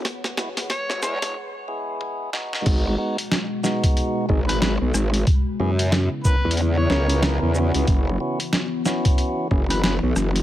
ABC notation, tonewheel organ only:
X:1
M:4/4
L:1/16
Q:"Swing 16ths" 1/4=92
K:G#m
V:1 name="Tonewheel organ"
z2 [G,B,EF]2 z2 [G,B,EG]2 z2 [G,B,EG]4 [G,B,DF]2- | [G,B,DF]2 [G,B,DF] z3 [G,B,DF]4 [G,B,DG]2 [G,B,DG]2 z2 | z2 [B,CEG]2 z2 [B,CEA]2 z2 [B,CEA]4 [B,CEF]2- | [B,CEF]2 [B,CEF] z3 [B,CEF]4 [B,CEG]2 [B,CEG]2 z2 |]